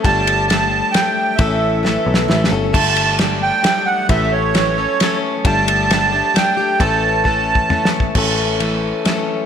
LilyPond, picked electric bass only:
\new Staff \with { instrumentName = "Picked electric bass" } { \clef bass \time 3/4 \key a \mixolydian \tempo 4 = 133 g,,2 r4 | a,,4. b,,8 a,,8 g,,8 | g,,2 r4 | a,,2 r4 |
g,,2 r4 | a,,2 r4 | \key a \major a,,2 r4 | }